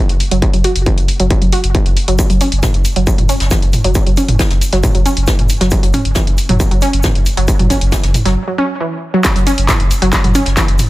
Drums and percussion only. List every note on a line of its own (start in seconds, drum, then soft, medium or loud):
0.09 closed hi-hat medium
0.20 open hi-hat medium
0.31 closed hi-hat medium
0.42 kick loud
0.42 closed hi-hat medium
0.54 closed hi-hat medium
0.64 open hi-hat loud
0.76 closed hi-hat medium
0.86 kick loud
0.86 closed hi-hat medium
0.98 closed hi-hat medium
1.08 open hi-hat medium
1.20 closed hi-hat medium
1.30 kick loud
1.30 closed hi-hat medium
1.42 closed hi-hat medium
1.52 open hi-hat loud
1.64 closed hi-hat medium
1.75 kick loud
1.75 closed hi-hat medium
1.86 closed hi-hat medium
1.97 open hi-hat medium
2.08 closed hi-hat medium
2.19 kick loud
2.19 closed hi-hat medium
2.19 shaker medium
2.30 closed hi-hat medium
2.30 closed hi-hat soft
2.41 open hi-hat loud
2.41 shaker medium
2.52 closed hi-hat medium
2.63 kick loud
2.63 snare loud
2.63 closed hi-hat medium
2.63 mid tom medium
2.63 shaker medium
2.74 closed hi-hat medium
2.85 open hi-hat medium
2.85 shaker medium
2.96 closed hi-hat medium
3.07 kick loud
3.07 closed hi-hat medium
3.07 shaker medium
3.18 closed hi-hat medium
3.18 mid tom medium
3.29 open hi-hat medium
3.29 shaker medium
3.40 snare medium
3.40 closed hi-hat medium
3.51 kick loud
3.51 snare loud
3.51 closed hi-hat medium
3.51 shaker medium
3.62 closed hi-hat medium
3.73 mid tom medium
3.73 open hi-hat medium
3.73 shaker medium
3.84 closed hi-hat medium
3.95 kick loud
3.95 closed hi-hat medium
3.95 shaker medium
4.07 closed hi-hat medium
4.17 open hi-hat loud
4.17 shaker medium
4.28 closed hi-hat medium
4.28 mid tom medium
4.39 kick loud
4.39 snare loud
4.39 closed hi-hat medium
4.39 shaker medium
4.51 snare medium
4.51 closed hi-hat medium
4.61 open hi-hat medium
4.61 shaker medium
4.73 snare soft
4.73 closed hi-hat medium
4.83 kick loud
4.83 closed hi-hat medium
4.83 mid tom medium
4.83 shaker medium
4.95 closed hi-hat medium
5.06 open hi-hat loud
5.06 shaker medium
5.17 closed hi-hat medium
5.27 kick loud
5.27 snare loud
5.27 closed hi-hat medium
5.27 shaker medium
5.39 closed hi-hat medium
5.39 mid tom medium
5.49 open hi-hat medium
5.49 shaker medium
5.60 snare soft
5.60 closed hi-hat medium
5.71 kick loud
5.71 closed hi-hat medium
5.71 shaker medium
5.83 closed hi-hat medium
5.83 closed hi-hat soft
5.94 mid tom medium
5.94 open hi-hat loud
5.94 shaker medium
6.05 closed hi-hat medium
6.15 kick loud
6.15 snare loud
6.15 closed hi-hat medium
6.15 shaker medium
6.27 closed hi-hat medium
6.38 open hi-hat medium
6.38 shaker medium
6.49 closed hi-hat medium
6.49 mid tom medium
6.60 kick loud
6.60 closed hi-hat medium
6.60 shaker medium
6.71 closed hi-hat medium
6.82 open hi-hat loud
6.82 shaker medium
6.93 closed hi-hat medium
7.03 kick loud
7.03 snare loud
7.03 closed hi-hat medium
7.03 mid tom medium
7.03 shaker loud
7.15 closed hi-hat medium
7.26 open hi-hat medium
7.26 shaker medium
7.37 closed hi-hat medium
7.48 kick loud
7.48 closed hi-hat medium
7.48 shaker medium
7.59 closed hi-hat medium
7.59 mid tom medium
7.70 kick medium
7.70 open hi-hat loud
7.70 shaker medium
7.81 closed hi-hat medium
7.92 kick loud
7.92 snare loud
7.92 closed hi-hat medium
7.92 shaker medium
8.03 snare medium
8.03 closed hi-hat medium
8.14 mid tom medium
8.14 open hi-hat medium
8.14 shaker medium
8.26 snare soft
8.26 closed hi-hat medium
9.24 kick loud
9.24 clap loud
9.24 closed hi-hat medium
9.24 shaker medium
9.36 closed hi-hat medium
9.36 closed hi-hat soft
9.47 open hi-hat loud
9.47 shaker medium
9.58 closed hi-hat medium
9.68 kick loud
9.68 snare loud
9.68 clap loud
9.68 closed hi-hat medium
9.68 mid tom medium
9.68 shaker medium
9.80 closed hi-hat medium
9.91 open hi-hat medium
9.91 shaker medium
10.02 closed hi-hat medium
10.12 kick loud
10.12 clap loud
10.12 closed hi-hat medium
10.12 shaker medium
10.24 closed hi-hat medium
10.24 mid tom medium
10.35 open hi-hat loud
10.35 shaker medium
10.45 snare medium
10.45 closed hi-hat medium
10.57 kick loud
10.57 snare loud
10.57 clap loud
10.57 closed hi-hat medium
10.57 shaker loud
10.68 closed hi-hat medium
10.79 mid tom medium
10.79 open hi-hat medium
10.79 shaker medium